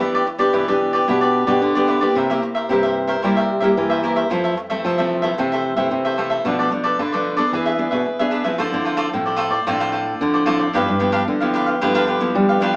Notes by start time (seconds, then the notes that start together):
Already playing: B3 D4 G4
0.00 E3 E4 G4 B4 D5
0.14 G4 B4 D5
0.27 muted cavaquinho stroke
0.38 B3 D4 G4 B4 D5
0.53 B2 E3 E4 G4 B4 D5
0.68 B3 D4 G4 B4 D5
0.93 G4 B4 D5
1.08 B2 E3 B3 D4 E4 G4 B4 D5
1.21 G4 B4 D5
1.47 B2 B3 D4 G4 B4 D5
1.62 B2 D3
1.75 B3 D4 G4 B4 D5
1.87 E4 G4 B4 D5
2.01 A#3 E4 G4 B4 D5
2.15 C3 E4 A#4 C5 E5
2.30 A#3 E4 G4 A#4 C5 E5
2.42 muted cavaquinho stroke
2.55 A#4 C5 E5
2.69 G2 C3 A#3 E4 G4 A#4 C5 E5
2.83 A#4 C5 E5
3.07 A#4 C5 E5
3.22 C3 G3 A#3 E4 G4 A#4 C5 E5
3.36 A#4 C5 E5
3.60 G3 A#3 E4 G4 A#4 C5 E5
3.77 G2 E3 A#3 E4 G4
3.90 A#4 C5 E5
4.03 A#3 E4 G4 A#4 C5 E5
4.16 A#4 C5 E5
4.30 F2 E3 F3 A3 C4 F4 A4 C5 E5
4.44 A4 C5 E5
4.57 muted cavaquinho stroke
4.70 E3 A3 C4 A4 C5 E5
4.84 C3 F3 F4 A4 C5 E5
4.98 E3 A3 C4 A4 C5 E5
5.22 E3 A3 C4 A4 C5 E5
5.38 F2 C3 E3 A3 C4 F4 A4 C5 E5
5.52 A4 C5 E5
5.76 C3 E3 A3 C4 A4 C5 E5
5.91 C3
6.05 A4 C5 E5
6.18 E3 A3 C4 F4 A4 C5 E5
6.30 A4 C5 E5
6.45 B2 F3 A3 D4 F4 A4 B4 D5
6.59 A4 B4 D5
6.71 F3 A3 D4, muted cavaquinho stroke
6.83 A4 B4 D5
6.99 B2 D3 F4 A4 B4 D5
7.12 F3 A3 D4 A4 B4 D5
7.37 B3 D4 G#4 A4 B4 D5
7.52 E3 D4 G#4 B4 E5
7.66 G#4 B4 E5
7.78 B3 D4 G#4
7.91 B2 G#4 B4 E5
8.06 B2
8.19 B3 D4 G#4 B4 E5
8.31 D4 G#4 B4 E5
8.44 F3 C4 E4 G#4 B4 E5
8.58 D3 F4 A4 C5 D5
8.73 D3 F3 C4 E4
8.85 F4 A4 C5 D5
8.97 F4 A4 C5 D5
9.13 A2 F3 C4 E4
9.26 A4 C5 D5
9.36 F4 A4 C5 D5
9.50 A4 C5 D5
9.67 A2 D3 F3 C4 E4 F4 A4 C5 D5
9.80 F4 A4 C5 D5
9.92 F4 A4 C5 D5
10.21 A2 D3 F3 C4 E4
10.34 A4 C5 D5
10.46 F3 C4 E4 F4 A4 C5 D5
10.59 A4 C5 D5
10.73 G2 F3 B3 D4 E4 G4 B4 F5
10.88 G2
10.99 F3 B3 D4 E4 G4 B4 F5
11.12 D4 G4 B4 F5
11.27 D3
11.40 F3 B3 E4 G4 B4 F5
11.54 D4 G4 B4 F5
11.66 G4 B4 F5
11.81 G2 D3 F3 B3 D4 E4 G4 B4 F5
11.94 D4 G4 B4 F5
12.07 D4 G4 B4 F5
12.20 F3 B3 E4
12.35 D3 G3
12.49 G4 B4 F5
12.61 F3 B3 D4 E4 G4 B4 F5